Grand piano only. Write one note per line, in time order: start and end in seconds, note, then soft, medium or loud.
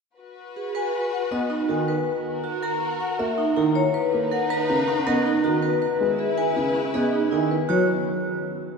1.31 1.56 B3 medium
1.69 1.94 D#3 medium
3.19 3.44 A#3 medium
3.57 3.81 D#3 medium
4.13 4.37 A#3 medium
4.70 4.94 C#3 medium
5.07 5.31 B3 medium
5.44 5.69 D#3 medium
6.01 6.25 G#3 medium
6.57 6.81 C#3 medium
6.94 7.19 B3 medium
7.32 7.56 D#3 medium
7.70 7.87 F#3 medium